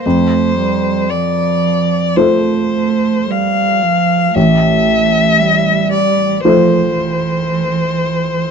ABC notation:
X:1
M:4/4
L:1/8
Q:1/4=57
K:F
V:1 name="Violin"
c2 d2 c2 f2 | e3 d c4 |]
V:2 name="Grand piano"
F,,4 [A,Fc]4 | A,,,4 [A,Fc]4 |]
V:3 name="Cello" clef=bass
A, G, F,2 A, A, G, F, | A,2 G,2 F, E,3 |]